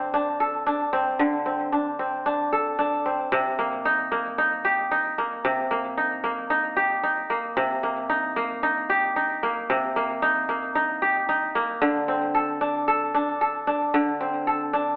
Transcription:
Already playing: D3 C4 D4 A4
0.14 D4
0.40 A4
0.67 D4
0.93 C4
1.19 D3
1.46 C4
1.72 D4
1.99 C4
2.26 D4
2.53 A4
2.79 D4
3.06 C4
3.32 C3
3.59 A#3
3.85 D#4
4.12 A#3
4.38 D#4
4.65 G4
4.91 D#4
5.18 A#3
5.45 C3
5.71 A#3
5.97 D#4
6.24 A#3
6.50 D#4
6.77 G4
7.03 D#4
7.30 A#3
7.57 C3
7.83 A#3
8.09 D#4
8.36 A#3
8.63 D#4
8.90 G4
9.16 D#4
9.43 A#3
9.70 C3
9.96 A#3
10.22 D#4
10.49 A#3
10.75 D#4
11.02 G4
11.29 D#4
11.55 A#3
11.82 D3
12.08 C4
12.35 A4
12.61 D4
12.88 A4
13.14 D4
13.41 A4
13.67 D4
13.94 D3
14.21 C4
14.47 A4
14.73 D4

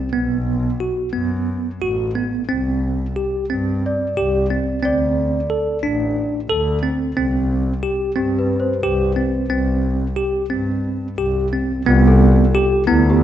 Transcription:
0.13 B1 B3
0.80 F#4
1.13 F#2 B3
1.82 A1 F#4
2.15 B3
2.49 C2 C4
3.16 G4
3.49 G2 C4
3.86 D5
4.17 C2 G4
4.51 C4
4.83 D2 C4 D5
5.50 A4
5.83 A1 D4
6.50 D2 A4
6.83 C4
7.16 C2 C4
7.83 G4
8.16 G2 C4 G4
8.39 B4
8.60 C5
8.82 C2 G4
9.16 C4
9.50 C2 C4
10.16 G4
10.50 G2 C4
11.18 C2 G4
11.53 C4
11.86 C2 B3 F4
12.08 A4
12.55 G4
12.87 D2 B3 E4
13.10 G4

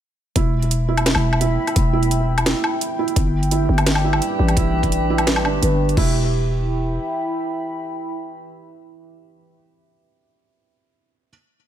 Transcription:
0.36 E1 E4, kick, closed hi-hat
0.53 B5
0.62 closed hi-hat
0.71 closed hi-hat
0.79 E5 G5
0.88 E4
0.97 closed hi-hat, low woodblock
1.06 snare, closed hi-hat
1.15 E1, low woodblock
1.33 low woodblock
1.41 E4, closed hi-hat
1.67 closed hi-hat, low woodblock
1.76 E1, kick, closed hi-hat
1.93 E4
2.03 closed hi-hat
2.11 closed hi-hat
2.38 closed hi-hat, low woodblock
2.46 E4, snare, closed hi-hat
2.64 low woodblock
2.81 closed hi-hat
2.99 E4
3.08 closed hi-hat
3.16 G1 G3 G4, kick, closed hi-hat
3.39 D4, closed hi-hat
3.44 B4
3.51 E4, closed hi-hat
3.69 G1
3.78 closed hi-hat, low woodblock
3.86 snare, closed hi-hat
3.95 low woodblock
4.04 E4
4.13 low woodblock
4.22 closed hi-hat
4.39 A1
4.48 closed hi-hat, low woodblock
4.57 E4, kick, closed hi-hat
4.83 kick, closed hi-hat
4.92 closed hi-hat
5.10 E4
5.18 closed hi-hat, low woodblock
5.27 snare, closed hi-hat
5.36 low woodblock
5.45 G1 D4, low woodblock
5.62 G1 B4, closed hi-hat
5.89 closed hi-hat
5.97 E1 E4, kick, crash
6.03 E5
6.08 G5
6.13 B5

